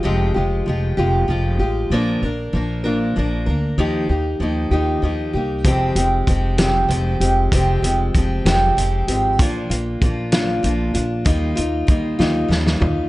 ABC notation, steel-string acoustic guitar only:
X:1
M:6/8
L:1/8
Q:3/8=64
K:Fdor
V:1 name="Steel-string acoustic guitar"
[F,,C,F,A,FG] [F,A,FG] [F,A,FG] [F,,C,F,A,FG] [F,A,FG] [F,A,FG] | [B,,F,B,DB] [B,DB] [F,B,DB] [B,,F,B,DB] [F,B,DB] [B,DB] | [E,F,B,EG] [B,EG] [F,B,EG] [E,F,B,EG] [F,B,EG] [B,EG] | [F,,C,F,A,CG] [F,A,CG] [F,A,CG] [F,,C,F,A,CG] [F,A,CG] [F,A,CG] |
[F,,C,F,A,CG] [F,A,CG] [F,A,CG] [F,,C,F,A,CG] [F,A,CG] [F,A,CG] | [B,,F,B,DF] [B,DF] [F,B,DF] [B,,F,B,DF] [F,B,DF] [B,DF] | [E,G,B,EF] [B,EF] [G,B,EF] [E,G,B,EF] [G,B,EF] [B,EF] |]